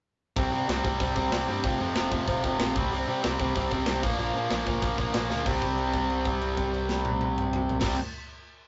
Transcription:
0.36 picked electric bass C2, overdriven electric guitar C3 G3 C4, kick, open hi-hat
0.51 picked electric bass C3, overdriven electric guitar C3 G3 C4
0.68 picked electric bass C2, overdriven electric guitar C3 G3 C4, snare, open hi-hat
0.84 picked electric bass C2, overdriven electric guitar C3 G3 C4, kick
1.00 picked electric bass C2, overdriven electric guitar C3 G3 C4, kick, open hi-hat
1.15 picked electric bass C2, overdriven electric guitar C3 G3 C4, kick
1.31 picked electric bass C2, overdriven electric guitar C3 G3 C4, snare, open hi-hat
1.48 picked electric bass G2, overdriven electric guitar C3 G3 C4
1.64 picked electric bass F1, overdriven electric guitar F2 C3 F3, kick, open hi-hat
1.80 picked electric bass F2, overdriven electric guitar F2 C3 F3
1.95 picked electric bass F1, overdriven electric guitar F2 C3 F3, snare, open hi-hat
2.11 picked electric bass F1, overdriven electric guitar F2 C3 F3, kick
2.27 picked electric bass F1, overdriven electric guitar F2 C3 F3, kick, open hi-hat
2.44 picked electric bass F1, overdriven electric guitar F2 C3 F3, kick
2.59 picked electric bass A#1, overdriven electric guitar F2 C3 F3, snare, open hi-hat
2.75 picked electric bass C2, overdriven electric guitar C3 G3 C4, kick
2.92 picked electric bass C2, overdriven electric guitar C3 G3 C4, open hi-hat
3.07 overdriven electric guitar C3 G3 C4, picked electric bass C3
3.23 picked electric bass C2, overdriven electric guitar C3 G3 C4, snare, open hi-hat
3.39 picked electric bass C2, overdriven electric guitar C3 G3 C4, kick
3.55 picked electric bass C2, overdriven electric guitar C3 G3 C4, kick, open hi-hat
3.71 picked electric bass C2, overdriven electric guitar C3 G3 C4, kick
3.86 picked electric bass C2, overdriven electric guitar C3 G3 C4, snare, open hi-hat
4.03 picked electric bass A#1, overdriven electric guitar A#2 F3 A#3, kick, crash
4.18 picked electric bass A#1, overdriven electric guitar A#2 F3 A#3
4.34 overdriven electric guitar A#2 F3 A#3, picked electric bass A#2
4.50 picked electric bass A#1, overdriven electric guitar A#2 F3 A#3, snare, open hi-hat
4.66 picked electric bass A#1, overdriven electric guitar A#2 F3 A#3, kick
4.81 picked electric bass A#1, overdriven electric guitar A#2 F3 A#3, kick, open hi-hat
4.96 picked electric bass A#1, overdriven electric guitar A#2 F3 A#3, kick
5.13 picked electric bass A#1, overdriven electric guitar A#2 F3 A#3, snare, open hi-hat
5.29 picked electric bass D2, overdriven electric guitar A#2 F3 A#3, snare
5.44 picked electric bass C2, overdriven electric guitar C3 G3, kick, crash
5.48 overdriven electric guitar C4
5.62 kick, crash
5.78 crash
5.93 kick, crash
6.10 crash
6.25 kick, crash
6.41 crash
6.57 kick, crash
6.74 crash
6.89 snare
7.05 high tom
7.21 high tom
7.38 mid tom
7.53 mid tom
7.69 floor tom
7.80 picked electric bass C2, overdriven electric guitar C3 G3 C4, kick, snare, crash

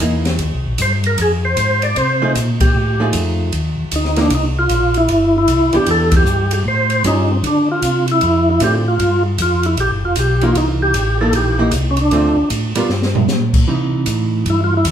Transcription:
0.00 tonewheel organ E2, hollow-body jazz guitar E3 A#3 D#4, kick, hi-hat pedal, ride
0.25 snare, ride
0.39 tonewheel organ D#2, kick, ride
0.54 tonewheel organ C2
0.66 tonewheel organ A#1
0.78 tonewheel organ G2 C5, kick, hi-hat pedal, ride
1.04 tonewheel organ A#4, ride
1.18 tonewheel organ F2 G#4, kick, ride
1.45 tonewheel organ C5
1.57 tonewheel organ G#2, kick, hi-hat pedal, ride
1.82 tonewheel organ D5, ride
1.96 tonewheel organ C3 C5, kick, ride
2.22 hollow-body jazz guitar F3 A3 D#4 G#4
2.35 tonewheel organ A#2, kick, hi-hat pedal, ride
2.60 tonewheel organ G4, kick, ride
2.74 tonewheel organ A2
3.00 hollow-body jazz guitar F3 A3 D#4 G#4
3.13 tonewheel organ F2, kick, hi-hat pedal, ride
3.52 tonewheel organ D#2, kick, ride
3.77 tonewheel organ D#2
3.92 tonewheel organ D2, kick, hi-hat pedal, ride
3.96 tonewheel organ D#4
4.05 snare
4.16 hollow-body jazz guitar E3 A#3 D#4, snare, ride
4.21 tonewheel organ D4
4.30 tonewheel organ C2, kick, ride
4.35 tonewheel organ D#4
4.59 tonewheel organ F4
4.69 tonewheel organ A#1, kick, hi-hat pedal, ride
4.94 tonewheel organ E4, ride
5.08 tonewheel organ G1, kick, ride
5.38 tonewheel organ E4
5.48 tonewheel organ C2, kick, hi-hat pedal, ride
5.73 tonewheel organ C2 G4, hollow-body jazz guitar E3 B3 D4 G4, ride
5.86 tonewheel organ E2, kick, ride
5.91 tonewheel organ A4
6.11 kick, ride
6.17 tonewheel organ G4
6.25 tonewheel organ G2, hi-hat pedal
6.51 tonewheel organ G4, ride
6.65 tonewheel organ A2 C5, kick
6.90 ride
7.04 tonewheel organ G2 D#4, hollow-body jazz guitar G3 C#4 F4, kick, hi-hat pedal, ride
7.31 tonewheel organ C4
7.43 tonewheel organ D3 D4, kick, ride
7.71 tonewheel organ F4
7.82 tonewheel organ C3, kick, hi-hat pedal, ride
8.08 ride
8.12 tonewheel organ E4
8.21 tonewheel organ F2, kick, ride
8.50 tonewheel organ E4
8.60 tonewheel organ A2 G4, hollow-body jazz guitar D3 A3 C4 F4, kick, hi-hat pedal, ride
8.88 tonewheel organ F4
9.00 tonewheel organ G2, kick, ride
9.38 tonewheel organ F2 F4, kick, hi-hat pedal, ride
9.63 tonewheel organ E4, ride
9.77 tonewheel organ A#1 G4, kick, ride
9.92 tonewheel organ G1
10.04 tonewheel organ F1 F4
10.16 tonewheel organ B1 G4, kick, hi-hat pedal, ride
10.41 hollow-body jazz guitar E3 A#3 D#4, tonewheel organ F4, ride
10.55 tonewheel organ C2 D#4, kick, ride
10.82 tonewheel organ G4
10.94 tonewheel organ A1, kick, hi-hat pedal, ride
11.21 hollow-body jazz guitar E3 A#3 D#4, tonewheel organ A4
11.33 tonewheel organ A#1 G4, kick, ride
11.59 hollow-body jazz guitar E3 A#3 D#4
11.71 tonewheel organ C2, kick, hi-hat pedal, ride
11.91 tonewheel organ C#4
11.97 ride
12.01 tonewheel organ D4
12.11 tonewheel organ D2, hollow-body jazz guitar D3 A3 C4 F4, kick, ride
12.36 tonewheel organ D2
12.50 tonewheel organ A2, kick, hi-hat pedal, ride
12.75 tonewheel organ A2, hollow-body jazz guitar G3 B3 F4 A#4, ride
12.89 tonewheel organ G2, snare
13.03 snare
13.15 floor tom
13.28 tonewheel organ A#2, snare, hi-hat pedal
13.54 kick, crash
13.67 tonewheel organ C3, hollow-body jazz guitar E3 D#4
14.06 tonewheel organ A2, kick, hi-hat pedal, ride
14.46 tonewheel organ G2, kick, ride
14.50 tonewheel organ E4
14.64 tonewheel organ F4
14.77 tonewheel organ E4
14.85 tonewheel organ D#2, kick, hi-hat pedal, ride

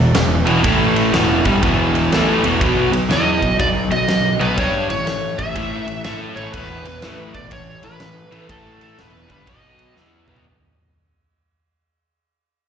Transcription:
Already playing: picked electric bass E1, overdriven electric guitar E2 B2
0.14 picked electric bass E1, overdriven electric guitar E2 B2, snare, ride
0.46 picked electric bass E1, overdriven electric guitar E2 B2 E3, ride
0.64 picked electric bass A1, overdriven electric guitar A2 E3 A3, kick, ride
0.96 ride
1.13 picked electric bass E1, overdriven electric guitar E2 B2 E3, snare, ride
1.45 picked electric bass G1, overdriven electric guitar G2 D3 G3, kick, ride
1.63 picked electric bass E1, overdriven electric guitar E2 B2 E3, kick, ride
1.95 ride
2.12 picked electric bass A1, overdriven electric guitar A2 E3 A3, snare, ride
2.43 picked electric bass E1, overdriven electric guitar E2 B2 E3, ride
2.61 picked electric bass B1, overdriven electric guitar B2 F#3 B3, kick, ride
2.92 picked electric bass B1, overdriven electric guitar B2 F#3, ride
3.09 picked electric bass E2, overdriven electric guitar E3 B3 E4, electric slide guitar D#5, snare, ride
3.42 picked electric bass B1, overdriven electric guitar B2 F#3, kick, ride
3.58 picked electric bass B1, overdriven electric guitar B2 F#3, electric slide guitar D5, kick, ride
3.91 picked electric bass B1, overdriven electric guitar B2 F#3, electric slide guitar D#5, ride
4.08 picked electric bass B1, overdriven electric guitar B2 F#3, snare, ride
4.40 picked electric bass B1, overdriven electric guitar B2 F#3 B3, electric slide guitar B4, ride
4.57 picked electric bass G2, overdriven electric guitar G3 D4 G4, electric slide guitar C#5, kick, ride
4.89 picked electric bass A1, overdriven electric guitar A2 E3, electric slide guitar C#5, ride
5.07 picked electric bass A1, overdriven electric guitar A2 E3, snare, ride
5.38 picked electric bass A1, overdriven electric guitar A2 E3, electric slide guitar E5, kick, ride
5.55 picked electric bass A1, overdriven electric guitar A2 E3 A3, kick, ride
5.87 picked electric bass A1, overdriven electric guitar A2 E3, ride
6.04 picked electric bass A2, overdriven electric guitar A3 E4 A4, electric slide guitar E5, snare, ride
6.36 picked electric bass A1, overdriven electric guitar A2 E3 A3, electric slide guitar C#5, ride
6.53 picked electric bass E1, overdriven electric guitar E2 B2 E3, electric slide guitar B4, kick, ride
6.85 picked electric bass E1, overdriven electric guitar E2 B2, ride
7.02 picked electric bass A1, overdriven electric guitar A2 E3 A3, snare, ride
7.34 picked electric bass E1, overdriven electric guitar E2 B2, electric slide guitar D5, kick, ride
7.51 picked electric bass A1, overdriven electric guitar A2 E3, electric slide guitar C#5, kick, ride
7.83 picked electric bass A1, overdriven electric guitar A2 E3, electric slide guitar B4, ride
8.00 picked electric bass A1, overdriven electric guitar A2 E3, snare, ride
8.31 picked electric bass A1, overdriven electric guitar A2 E3 A3, ride
8.49 picked electric bass A1, overdriven electric guitar A2 E3 A3, electric slide guitar A4, kick, ride
8.81 electric slide guitar A4, ride
8.98 picked electric bass E1, overdriven electric guitar E2 B2 E3, electric slide guitar B4, snare, ride
9.29 picked electric bass G1, overdriven electric guitar G2 D3 G3, electric slide guitar B4, kick, ride
9.46 picked electric bass B1, overdriven electric guitar B2 F#3 B3, electric slide guitar D#5, kick, ride
9.79 ride
9.95 picked electric bass E2, overdriven electric guitar E3 B3 E4, snare
10.27 picked electric bass B1, overdriven electric guitar B2 F#3 B3, mid tom
10.36 floor tom

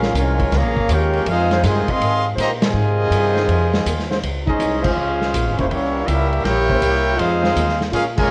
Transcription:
Already playing: upright bass A#1, trombone section G#3 C#4 F4, trumpet section C#4 G#4 A#4 F5
0.03 snare
0.14 upright bass C2, hi-hat pedal, ride
0.18 trombone section F3 G#3 C#4, trumpet section F4 A#4 C#5 G#5
0.40 kick, ride
0.51 upright bass C#2, snare, ride
0.56 trombone section C#3 F3 A#3, trumpet section G#4 C#5 F5 A#5
0.64 upright bass A#1
0.76 upright bass G#1, kick
0.89 upright bass D#2, hi-hat pedal, ride
0.93 trombone section G#3 C#4 G4, trumpet section F4 A#4 C#5 G5
1.13 ride
1.26 upright bass F2, trumpet section D#4 C5 F5, ride
1.30 trombone section G#3 C4 F4, trumpet section G#4
1.51 trombone section G#3 D#4 F4 C5, snare, ride
1.63 upright bass G2, trombone section C3 D#3 G#3, trumpet section F4 C5 D#5 G#5, snare, hi-hat pedal, ride
1.87 trombone section G#3 C4, trumpet section G#4 D#5 F5 C6, muted upright bass stroke, kick, ride
1.92 trombone section D#3
1.99 upright bass G#2, ride
2.35 upright bass A#2, trombone section G#3 D#4 F4 C5, hi-hat pedal, ride
2.40 trombone section A#3, trumpet section G4 C5 D#5 A#5
2.62 trombone section C3 D#3 G#4, trumpet section F4 C5 D#5 G#5, snare, ride
2.74 upright bass G#2
3.10 upright bass G2, hi-hat pedal, ride
3.34 trombone section G#3 D#4 F4 C5, snare
3.48 upright bass F2, ride
3.73 snare
3.85 upright bass D#2, hi-hat pedal, ride
3.99 snare
4.10 trombone section G#3 C#4 F4 C5, snare
4.22 upright bass C#2, ride
4.46 trombone section G#3 C#4 D#4, trumpet section C#4 G#4 C5 D#5, kick
4.59 upright bass C2, hi-hat pedal, ride
4.82 trombone section G#3 C#4 F4 C5, trumpet section G#4 C5 F5, kick, crash
4.86 trumpet section C#4
4.96 upright bass C#2
5.21 snare
5.34 upright bass A#1, hi-hat pedal, ride
5.47 upright bass G#1
5.57 upright bass F1, trombone section F3 G#3 A#3 C#4 E4 C5, trumpet section G#3 C4 F4 C#5, kick, ride
5.67 upright bass C2, trombone section G3 A#3 C#4, trumpet section A#3 C5, ride
5.72 trumpet section E4 G4 C#5
6.06 upright bass C#2, trombone section G3 A#3 E4, trumpet section C#4 G4 A#4 E5, hi-hat pedal, ride
6.33 ride
6.44 upright bass A#1, trombone section A#3 E4 G4, trumpet section E4 A#4 C#5 G5, snare, ride
6.70 trombone section A#3 C#4 E4 C5, kick
6.81 upright bass C2, hi-hat pedal, ride
7.15 upright bass F2, trombone section G#3 C4 F4
7.19 trumpet section D#4 G#4 C5 F5, ride
7.42 trombone section G#3 D#4 F4 C5, snare
7.56 upright bass D#2, hi-hat pedal, ride
7.69 snare
7.81 snare
7.91 upright bass A#2, trombone section G#3 C#4 F4, trumpet section C#4 G#4 A#4 F5, ride
8.16 trombone section C#3 F3 G#3, trumpet section F4 A#4 C#5 G#5, kick, crash

